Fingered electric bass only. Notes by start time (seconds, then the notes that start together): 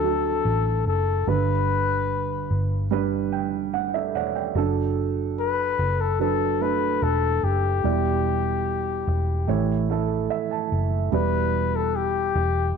Already playing: D2
0.45 A1
0.86 F#1
1.27 G1
2.50 G1
4.14 E1
4.55 F#1
5.79 F#1
7.02 E1
7.43 F#1
7.84 E1
9.07 E1
9.48 A1
10.72 F#1
11.12 E1
12.35 E1